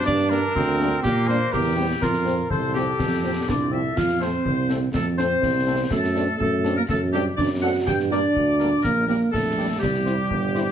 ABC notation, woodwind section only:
X:1
M:2/4
L:1/16
Q:1/4=123
K:F
V:1 name="Woodwind section"
D4 C4 | B,4 G4 | F4 c2 G2- | G4 [Fd]2 [Ae]2 |
f2 c6 | A2 c6 | A4 A3 B | A2 G2 d2 ^f2 |
g2 d6 | B2 B2 A4 | G8 |]